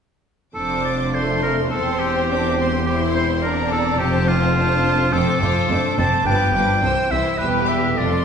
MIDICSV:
0, 0, Header, 1, 7, 480
1, 0, Start_track
1, 0, Tempo, 588813
1, 455, Time_signature, 2, 2, 24, 8
1, 1408, Tempo, 567108
1, 6208, Tempo, 592300
1, 6897, End_track
2, 0, Start_track
2, 0, Title_t, "Violin section"
2, 0, Program_c, 0, 48
2, 459, Note_on_c, 0, 86, 43
2, 908, Note_off_c, 0, 86, 0
2, 939, Note_on_c, 0, 84, 41
2, 1405, Note_off_c, 0, 84, 0
2, 1416, Note_on_c, 0, 84, 41
2, 1885, Note_off_c, 0, 84, 0
2, 1894, Note_on_c, 0, 86, 44
2, 2130, Note_off_c, 0, 86, 0
2, 2140, Note_on_c, 0, 84, 47
2, 2362, Note_off_c, 0, 84, 0
2, 2372, Note_on_c, 0, 84, 49
2, 2849, Note_off_c, 0, 84, 0
2, 2857, Note_on_c, 0, 82, 46
2, 3333, Note_on_c, 0, 81, 50
2, 3336, Note_off_c, 0, 82, 0
2, 3803, Note_off_c, 0, 81, 0
2, 3813, Note_on_c, 0, 81, 51
2, 4278, Note_off_c, 0, 81, 0
2, 4280, Note_on_c, 0, 86, 52
2, 4506, Note_off_c, 0, 86, 0
2, 4517, Note_on_c, 0, 86, 45
2, 4753, Note_off_c, 0, 86, 0
2, 4764, Note_on_c, 0, 86, 48
2, 5000, Note_off_c, 0, 86, 0
2, 5010, Note_on_c, 0, 86, 45
2, 5246, Note_off_c, 0, 86, 0
2, 5255, Note_on_c, 0, 86, 49
2, 5465, Note_off_c, 0, 86, 0
2, 5475, Note_on_c, 0, 86, 42
2, 5716, Note_off_c, 0, 86, 0
2, 5719, Note_on_c, 0, 88, 44
2, 5950, Note_off_c, 0, 88, 0
2, 5960, Note_on_c, 0, 88, 40
2, 6190, Note_off_c, 0, 88, 0
2, 6200, Note_on_c, 0, 88, 44
2, 6265, Note_off_c, 0, 88, 0
2, 6427, Note_on_c, 0, 86, 41
2, 6491, Note_off_c, 0, 86, 0
2, 6674, Note_on_c, 0, 84, 44
2, 6897, Note_off_c, 0, 84, 0
2, 6897, End_track
3, 0, Start_track
3, 0, Title_t, "Oboe"
3, 0, Program_c, 1, 68
3, 445, Note_on_c, 1, 69, 56
3, 676, Note_off_c, 1, 69, 0
3, 693, Note_on_c, 1, 74, 54
3, 937, Note_on_c, 1, 72, 49
3, 950, Note_off_c, 1, 74, 0
3, 1161, Note_off_c, 1, 72, 0
3, 1166, Note_on_c, 1, 70, 48
3, 1273, Note_off_c, 1, 70, 0
3, 1395, Note_on_c, 1, 69, 54
3, 1635, Note_on_c, 1, 67, 59
3, 1647, Note_off_c, 1, 69, 0
3, 2363, Note_off_c, 1, 67, 0
3, 2368, Note_on_c, 1, 67, 56
3, 2480, Note_off_c, 1, 67, 0
3, 2615, Note_on_c, 1, 72, 56
3, 2724, Note_off_c, 1, 72, 0
3, 2846, Note_on_c, 1, 70, 60
3, 3083, Note_off_c, 1, 70, 0
3, 3088, Note_on_c, 1, 69, 59
3, 3320, Note_off_c, 1, 69, 0
3, 3326, Note_on_c, 1, 67, 64
3, 3573, Note_on_c, 1, 65, 72
3, 3585, Note_off_c, 1, 67, 0
3, 4289, Note_on_c, 1, 69, 75
3, 4302, Note_off_c, 1, 65, 0
3, 5012, Note_off_c, 1, 69, 0
3, 5016, Note_on_c, 1, 81, 68
3, 5245, Note_off_c, 1, 81, 0
3, 5250, Note_on_c, 1, 79, 78
3, 5966, Note_on_c, 1, 76, 63
3, 5979, Note_off_c, 1, 79, 0
3, 6193, Note_on_c, 1, 71, 65
3, 6205, Note_off_c, 1, 76, 0
3, 6438, Note_on_c, 1, 76, 58
3, 6450, Note_off_c, 1, 71, 0
3, 6674, Note_on_c, 1, 74, 56
3, 6687, Note_off_c, 1, 76, 0
3, 6897, Note_off_c, 1, 74, 0
3, 6897, End_track
4, 0, Start_track
4, 0, Title_t, "Viola section"
4, 0, Program_c, 2, 48
4, 457, Note_on_c, 2, 62, 41
4, 458, Note_on_c, 2, 72, 37
4, 908, Note_off_c, 2, 72, 0
4, 936, Note_on_c, 2, 69, 37
4, 1378, Note_off_c, 2, 62, 0
4, 1398, Note_off_c, 2, 69, 0
4, 1408, Note_on_c, 2, 60, 39
4, 1409, Note_on_c, 2, 72, 45
4, 1884, Note_off_c, 2, 60, 0
4, 1894, Note_on_c, 2, 60, 42
4, 2358, Note_off_c, 2, 72, 0
4, 2362, Note_off_c, 2, 60, 0
4, 2371, Note_on_c, 2, 72, 42
4, 2372, Note_on_c, 2, 60, 49
4, 2848, Note_off_c, 2, 72, 0
4, 2862, Note_on_c, 2, 74, 42
4, 3337, Note_on_c, 2, 72, 46
4, 3339, Note_off_c, 2, 74, 0
4, 3780, Note_off_c, 2, 60, 0
4, 3804, Note_off_c, 2, 72, 0
4, 3812, Note_on_c, 2, 57, 45
4, 3814, Note_on_c, 2, 72, 47
4, 4279, Note_off_c, 2, 72, 0
4, 4283, Note_off_c, 2, 57, 0
4, 4291, Note_on_c, 2, 72, 47
4, 4293, Note_on_c, 2, 57, 47
4, 4514, Note_off_c, 2, 57, 0
4, 4516, Note_off_c, 2, 72, 0
4, 4524, Note_on_c, 2, 57, 43
4, 4526, Note_on_c, 2, 72, 44
4, 4757, Note_off_c, 2, 57, 0
4, 4757, Note_off_c, 2, 72, 0
4, 4767, Note_on_c, 2, 57, 46
4, 4767, Note_on_c, 2, 72, 45
4, 4999, Note_off_c, 2, 57, 0
4, 5001, Note_off_c, 2, 72, 0
4, 5009, Note_on_c, 2, 57, 44
4, 5011, Note_on_c, 2, 72, 42
4, 5243, Note_on_c, 2, 53, 49
4, 5244, Note_on_c, 2, 71, 47
4, 5245, Note_off_c, 2, 57, 0
4, 5246, Note_off_c, 2, 72, 0
4, 5473, Note_off_c, 2, 71, 0
4, 5475, Note_off_c, 2, 53, 0
4, 5483, Note_on_c, 2, 71, 45
4, 5485, Note_on_c, 2, 53, 45
4, 5720, Note_off_c, 2, 71, 0
4, 5721, Note_off_c, 2, 53, 0
4, 5726, Note_on_c, 2, 72, 43
4, 5727, Note_on_c, 2, 52, 42
4, 5953, Note_off_c, 2, 52, 0
4, 5953, Note_off_c, 2, 72, 0
4, 5963, Note_on_c, 2, 52, 44
4, 5963, Note_on_c, 2, 72, 45
4, 6202, Note_off_c, 2, 52, 0
4, 6202, Note_off_c, 2, 72, 0
4, 6204, Note_on_c, 2, 55, 45
4, 6204, Note_on_c, 2, 71, 46
4, 6650, Note_off_c, 2, 55, 0
4, 6650, Note_off_c, 2, 71, 0
4, 6681, Note_on_c, 2, 53, 40
4, 6681, Note_on_c, 2, 69, 43
4, 6897, Note_off_c, 2, 53, 0
4, 6897, Note_off_c, 2, 69, 0
4, 6897, End_track
5, 0, Start_track
5, 0, Title_t, "Violin section"
5, 0, Program_c, 3, 48
5, 945, Note_on_c, 3, 57, 37
5, 1379, Note_off_c, 3, 57, 0
5, 1410, Note_on_c, 3, 60, 48
5, 1882, Note_off_c, 3, 60, 0
5, 1882, Note_on_c, 3, 62, 44
5, 2126, Note_on_c, 3, 60, 40
5, 2129, Note_off_c, 3, 62, 0
5, 2194, Note_off_c, 3, 60, 0
5, 2374, Note_on_c, 3, 64, 52
5, 2850, Note_off_c, 3, 64, 0
5, 2866, Note_on_c, 3, 62, 49
5, 3331, Note_off_c, 3, 62, 0
5, 3348, Note_on_c, 3, 60, 52
5, 3816, Note_off_c, 3, 60, 0
5, 3819, Note_on_c, 3, 62, 50
5, 4291, Note_off_c, 3, 62, 0
5, 4298, Note_on_c, 3, 60, 52
5, 4526, Note_on_c, 3, 65, 54
5, 4528, Note_off_c, 3, 60, 0
5, 4768, Note_off_c, 3, 65, 0
5, 4772, Note_on_c, 3, 62, 47
5, 5012, Note_off_c, 3, 62, 0
5, 5013, Note_on_c, 3, 60, 51
5, 5251, Note_on_c, 3, 59, 53
5, 5252, Note_off_c, 3, 60, 0
5, 5485, Note_off_c, 3, 59, 0
5, 5493, Note_on_c, 3, 62, 49
5, 5727, Note_on_c, 3, 60, 46
5, 5730, Note_off_c, 3, 62, 0
5, 5966, Note_off_c, 3, 60, 0
5, 5972, Note_on_c, 3, 64, 50
5, 6207, Note_on_c, 3, 67, 53
5, 6211, Note_off_c, 3, 64, 0
5, 6674, Note_off_c, 3, 67, 0
5, 6689, Note_on_c, 3, 65, 43
5, 6897, Note_off_c, 3, 65, 0
5, 6897, End_track
6, 0, Start_track
6, 0, Title_t, "Cello section"
6, 0, Program_c, 4, 48
6, 449, Note_on_c, 4, 41, 41
6, 1374, Note_off_c, 4, 41, 0
6, 1408, Note_on_c, 4, 40, 45
6, 3337, Note_off_c, 4, 40, 0
6, 3341, Note_on_c, 4, 41, 50
6, 4269, Note_off_c, 4, 41, 0
6, 4287, Note_on_c, 4, 41, 54
6, 4355, Note_off_c, 4, 41, 0
6, 4526, Note_on_c, 4, 41, 51
6, 4594, Note_off_c, 4, 41, 0
6, 4762, Note_on_c, 4, 41, 50
6, 4830, Note_off_c, 4, 41, 0
6, 5008, Note_on_c, 4, 41, 51
6, 5076, Note_off_c, 4, 41, 0
6, 5244, Note_on_c, 4, 43, 51
6, 5312, Note_off_c, 4, 43, 0
6, 5487, Note_on_c, 4, 43, 47
6, 5555, Note_off_c, 4, 43, 0
6, 5721, Note_on_c, 4, 36, 45
6, 5789, Note_off_c, 4, 36, 0
6, 5964, Note_on_c, 4, 36, 50
6, 6032, Note_off_c, 4, 36, 0
6, 6206, Note_on_c, 4, 40, 48
6, 6651, Note_off_c, 4, 40, 0
6, 6687, Note_on_c, 4, 41, 42
6, 6897, Note_off_c, 4, 41, 0
6, 6897, End_track
7, 0, Start_track
7, 0, Title_t, "Double bass section"
7, 0, Program_c, 5, 48
7, 454, Note_on_c, 5, 29, 39
7, 1376, Note_off_c, 5, 29, 0
7, 1409, Note_on_c, 5, 28, 45
7, 3333, Note_on_c, 5, 29, 54
7, 3338, Note_off_c, 5, 28, 0
7, 4265, Note_off_c, 5, 29, 0
7, 4292, Note_on_c, 5, 29, 56
7, 4360, Note_off_c, 5, 29, 0
7, 4527, Note_on_c, 5, 29, 49
7, 4595, Note_off_c, 5, 29, 0
7, 4767, Note_on_c, 5, 29, 43
7, 4835, Note_off_c, 5, 29, 0
7, 5004, Note_on_c, 5, 29, 46
7, 5072, Note_off_c, 5, 29, 0
7, 5244, Note_on_c, 5, 31, 51
7, 5311, Note_off_c, 5, 31, 0
7, 5488, Note_on_c, 5, 31, 45
7, 5556, Note_off_c, 5, 31, 0
7, 5728, Note_on_c, 5, 36, 43
7, 5796, Note_off_c, 5, 36, 0
7, 5966, Note_on_c, 5, 36, 43
7, 6034, Note_off_c, 5, 36, 0
7, 6200, Note_on_c, 5, 28, 50
7, 6648, Note_off_c, 5, 28, 0
7, 6681, Note_on_c, 5, 29, 42
7, 6897, Note_off_c, 5, 29, 0
7, 6897, End_track
0, 0, End_of_file